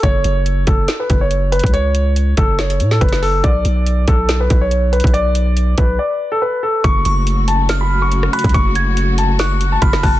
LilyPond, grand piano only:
\new Staff \with { instrumentName = "Grand piano" } { \time 4/4 \key fis \minor \tempo 4 = 141 cis''4. a'8. b'8 cis''8. b'8 | cis''4. a'8 cis''8. a'16 b'8 a'8 | d''4. a'8. b'8 cis''8. b'8 | d''4. b'8 d''8. a'16 b'8 a'8 |
cis'''4. a''8. b''8 cis'''8. b''8 | cis'''4. a''8 cis'''8. a''16 b''8 a''8 | }